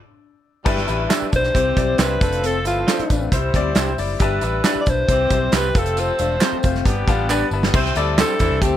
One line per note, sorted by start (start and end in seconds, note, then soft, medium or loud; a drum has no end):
0.65 0.83 G1 loud
0.65 1.31 B2 medium
0.65 0.84 G3 loud
0.65 1.31 G3 medium
0.65 0.84 D4 loud
0.65 1.31 E4 medium
0.65 0.84 E4 loud
0.65 0.79 G4 medium
0.65 0.84 B4 loud
0.65 kick loud
0.65 crash medium
0.65 tambourine soft
0.77 snare soft
0.88 1.06 A1 medium
0.88 1.06 G3 medium
0.88 1.06 D4 medium
0.88 1.02 E4 medium
0.88 1.06 E4 medium
0.88 1.06 B4 loud
0.88 closed hi-hat medium
0.88 tambourine soft
1.09 1.28 G3 medium
1.09 1.28 D4 medium
1.09 1.25 D4 medium
1.09 1.52 D4 medium
1.09 1.28 E4 medium
1.09 1.25 G4 medium
1.09 1.28 B4 medium
1.09 1.26 B4 medium
1.09 1.26 E5 medium
1.09 snare loud
1.09 clap loud
1.09 closed hi-hat medium
1.09 tambourine medium
1.22 muted fingered electric bass stroke soft
1.32 1.50 B1 medium
1.32 1.50 G3 medium
1.32 1.50 D4 medium
1.32 1.50 E4 medium
1.32 1.50 B4 medium
1.32 2.03 C5 loud
1.32 kick medium
1.32 closed hi-hat medium
1.32 tambourine medium
1.43 snare soft
1.53 1.72 C2 medium
1.53 1.98 E3 medium
1.53 1.72 G3 medium
1.53 1.98 C4 medium
1.53 1.97 C4 medium
1.53 1.73 C4 medium
1.53 1.72 E4 medium
1.53 1.98 G4 medium
1.53 1.73 C5 medium
1.53 kick medium
1.53 closed hi-hat medium
1.77 1.94 B1 medium
1.77 1.95 G3 loud
1.77 1.95 C4 medium
1.77 1.95 E4 medium
1.77 1.95 D5 loud
1.77 kick medium
1.77 closed hi-hat medium
1.98 2.16 C2 medium
1.98 2.17 G3 medium
1.98 2.14 C4 medium
1.98 2.17 C4 medium
1.98 2.41 D4 medium
1.98 2.14 E4 medium
1.98 2.17 E4 medium
1.98 2.14 G4 medium
1.98 2.47 B4 medium
1.98 2.17 C5 loud
1.98 2.14 C5 medium
1.98 snare loud
1.98 clap medium
1.98 closed hi-hat medium
1.98 tambourine loud
2.21 2.65 F1 medium
2.21 3.09 F3 medium
2.21 2.57 A3 medium
2.21 2.57 C4 medium
2.21 3.09 C4 medium
2.21 2.57 F4 medium
2.21 3.09 A4 medium
2.21 2.57 C5 medium
2.21 kick loud
2.21 closed hi-hat medium
2.21 tambourine medium
2.33 closed hi-hat medium
2.44 2.58 C4 medium
2.44 2.66 A4 medium
2.44 closed hi-hat medium
2.44 tambourine medium
2.65 2.83 G1 medium
2.65 2.84 A3 medium
2.65 2.84 C4 medium
2.65 2.79 E4 medium
2.65 3.29 F4 medium
2.65 2.84 F4 medium
2.65 2.85 B4 medium
2.65 closed hi-hat medium
2.65 tambourine medium
2.87 3.06 A3 medium
2.87 3.02 C4 medium
2.87 3.06 C4 medium
2.87 3.30 D4 medium
2.87 3.03 F4 medium
2.87 3.06 F4 medium
2.87 3.03 A4 medium
2.87 3.03 C5 medium
2.87 3.06 C5 medium
2.87 snare medium
2.87 clap medium
2.87 closed hi-hat medium
2.87 tambourine medium
2.99 muted fingered electric bass stroke soft
2.99 closed hi-hat medium
3.10 3.28 A1 medium
3.10 3.28 A3 medium
3.10 3.28 C4 medium
3.10 3.28 F4 medium
3.10 3.28 B4 medium
3.10 kick medium
3.10 closed hi-hat medium
3.10 tambourine medium
3.31 3.49 C2 loud
3.31 3.97 G3 medium
3.31 3.50 G3 medium
3.31 3.50 C4 medium
3.31 3.97 E4 medium
3.31 3.50 E4 medium
3.31 3.97 C5 medium
3.31 3.50 C5 medium
3.31 kick medium
3.31 closed hi-hat medium
3.31 tambourine soft
3.54 3.71 D2 medium
3.54 3.72 G3 loud
3.54 3.68 C4 medium
3.54 3.73 C4 loud
3.54 3.72 E4 loud
3.54 3.73 D5 loud
3.54 kick medium
3.54 closed hi-hat medium
3.75 3.93 C2 medium
3.75 3.94 G3 loud
3.75 3.91 C4 medium
3.75 3.94 C4 loud
3.75 3.90 D4 medium
3.75 3.91 E4 medium
3.75 3.94 E4 loud
3.75 3.91 G4 medium
3.75 3.94 C5 loud
3.75 3.91 C5 medium
3.75 snare loud
3.75 clap loud
3.75 closed hi-hat medium
3.75 tambourine loud
3.98 4.15 F#1 medium
3.98 4.16 G3 medium
3.98 4.16 C4 medium
3.98 4.12 E4 medium
3.98 4.16 E4 medium
3.98 4.17 D5 loud
3.98 open hi-hat medium
3.98 tambourine medium
4.19 4.38 G1 loud
4.19 4.85 G3 medium
4.19 4.39 G3 loud
4.19 4.39 D4 loud
4.19 4.85 E4 medium
4.19 4.39 E4 loud
4.19 4.34 G4 medium
4.19 4.85 B4 medium
4.19 4.39 B4 loud
4.19 kick loud
4.19 closed hi-hat medium
4.19 tambourine medium
4.41 4.60 A1 medium
4.41 4.60 G3 medium
4.41 4.60 D4 medium
4.41 4.56 E4 medium
4.41 4.61 E4 medium
4.41 4.61 B4 loud
4.41 closed hi-hat medium
4.41 tambourine medium
4.64 4.79 G3 medium
4.64 4.82 G3 medium
4.64 5.06 D4 medium
4.64 4.82 D4 medium
4.64 4.80 D4 medium
4.64 4.83 E4 medium
4.64 4.80 E4 medium
4.64 4.83 B4 medium
4.64 4.80 B4 medium
4.64 snare loud
4.64 clap medium
4.64 closed hi-hat medium
4.64 tambourine medium
4.75 muted fingered electric bass stroke soft
4.81 4.90 D5 medium
4.86 5.04 B1 medium
4.86 5.04 G3 medium
4.86 5.05 D4 medium
4.86 5.05 E4 medium
4.86 5.05 B4 medium
4.86 5.54 C5 loud
4.86 kick medium
4.86 closed hi-hat medium
4.86 tambourine medium
5.08 5.26 C2 medium
5.08 5.53 E3 medium
5.08 5.27 G3 medium
5.08 5.50 C4 medium
5.08 5.27 C4 medium
5.08 5.53 C4 medium
5.08 5.27 E4 medium
5.08 5.53 G4 medium
5.08 5.27 C5 medium
5.08 kick medium
5.08 closed hi-hat medium
5.30 5.48 B1 medium
5.30 5.49 G3 loud
5.30 5.49 C4 medium
5.30 5.49 E4 medium
5.30 5.49 C5 loud
5.30 kick medium
5.30 closed hi-hat medium
5.52 5.70 C2 medium
5.52 5.70 G3 loud
5.52 5.68 C4 medium
5.52 5.70 C4 medium
5.52 5.70 E4 medium
5.52 5.68 E4 medium
5.52 5.95 G4 medium
5.52 5.68 G4 medium
5.52 5.70 B4 loud
5.52 5.80 B4 loud
5.52 5.68 C5 medium
5.52 snare loud
5.52 clap loud
5.52 closed hi-hat medium
5.52 tambourine loud
5.75 6.09 F1 medium
5.75 6.62 F3 medium
5.75 6.11 A3 medium
5.75 6.11 C4 medium
5.75 6.62 C4 medium
5.75 6.11 F4 medium
5.75 6.62 A4 medium
5.75 6.01 A4 medium
5.75 5.81 B4 medium
5.75 kick loud
5.75 closed hi-hat medium
5.75 tambourine medium
5.81 6.14 C5 medium
5.86 closed hi-hat medium
5.97 6.12 F4 medium
5.97 6.87 C5 medium
5.97 closed hi-hat medium
5.97 tambourine medium
6.18 6.37 E1 loud
6.18 6.37 A3 medium
6.18 6.37 C4 medium
6.18 6.33 D4 medium
6.18 6.37 F4 medium
6.18 6.37 C5 medium
6.18 closed hi-hat medium
6.18 tambourine medium
6.40 6.59 A3 medium
6.40 6.56 C4 medium
6.40 6.59 C4 medium
6.40 6.83 C4 medium
6.40 6.56 F4 medium
6.40 6.59 F4 medium
6.40 6.56 A4 medium
6.40 6.59 C5 medium
6.40 6.56 C5 loud
6.40 snare loud
6.40 clap medium
6.40 closed hi-hat medium
6.40 tambourine medium
6.52 muted fingered electric bass stroke soft
6.63 6.81 F1 medium
6.63 6.81 A3 medium
6.63 6.81 C4 medium
6.63 6.81 F4 medium
6.63 6.82 C5 medium
6.63 kick medium
6.63 closed hi-hat medium
6.63 tambourine medium
6.75 snare soft
6.85 7.03 G1 loud
6.85 7.51 D3 medium
6.85 7.03 G3 medium
6.85 7.03 B3 medium
6.85 7.51 B3 medium
6.85 7.03 D4 medium
6.85 7.51 G4 medium
6.85 7.03 B4 medium
6.85 kick medium
6.85 closed hi-hat medium
6.85 tambourine soft
7.08 7.42 A1 medium
7.08 7.25 G3 loud
7.08 7.26 B3 loud
7.08 7.22 B3 medium
7.08 7.26 D4 loud
7.08 7.26 F4 loud
7.08 kick medium
7.08 closed hi-hat medium
7.08 tambourine soft
7.29 7.48 G3 loud
7.29 7.44 B3 medium
7.29 7.48 B3 medium
7.29 7.45 D4 medium
7.29 7.48 D4 loud
7.29 7.44 D4 medium
7.29 7.45 G4 medium
7.29 7.45 B4 medium
7.29 7.48 B4 loud
7.29 clap loud
7.29 tambourine loud
7.51 7.68 G1 medium
7.51 7.70 G3 medium
7.51 7.70 B3 medium
7.51 7.70 D4 medium
7.51 7.67 E4 medium
7.51 7.70 B4 loud
7.51 tambourine medium
7.63 snare medium
7.74 7.91 C2 loud
7.74 7.92 G3 loud
7.74 7.92 C4 loud
7.74 7.88 C4 medium
7.74 7.93 C4 loud
7.74 7.92 E4 loud
7.74 7.92 C5 loud
7.74 kick loud
7.74 crash loud
7.74 tambourine medium
7.85 snare soft
7.95 8.21 D2 loud
7.95 8.14 G3 loud
7.95 8.14 A3 medium
7.95 8.14 C4 loud
7.95 8.10 E4 medium
7.95 8.14 E4 loud
7.95 8.14 A4 medium
7.95 8.14 D5 loud
7.95 closed hi-hat medium
7.95 tambourine soft
8.18 8.36 G3 medium
8.18 8.32 C4 medium
8.18 8.36 C4 medium
8.18 8.60 D4 medium
8.18 8.33 E4 medium
8.18 8.36 E4 medium
8.18 8.36 G4 medium
8.18 8.33 G4 medium
8.18 8.63 A4 loud
8.18 8.33 C5 medium
8.18 8.36 C5 medium
8.18 snare loud
8.18 clap medium
8.18 closed hi-hat medium
8.18 tambourine loud
8.39 8.48 E2 medium
8.39 8.58 E3 loud
8.39 8.58 G3 medium
8.39 8.58 C4 medium
8.39 8.58 E4 loud
8.39 8.58 E4 medium
8.39 8.58 C5 medium
8.39 kick medium
8.39 closed hi-hat medium
8.39 tambourine medium
8.51 8.59 C2 medium
8.61 8.77 D2 loud
8.61 8.77 G3 medium
8.61 8.77 A3 medium
8.61 8.77 C4 medium
8.61 8.77 E4 medium
8.61 8.77 G4 medium
8.61 8.77 A4 medium
8.61 8.77 C5 medium
8.61 kick medium
8.61 closed hi-hat medium
8.61 tambourine soft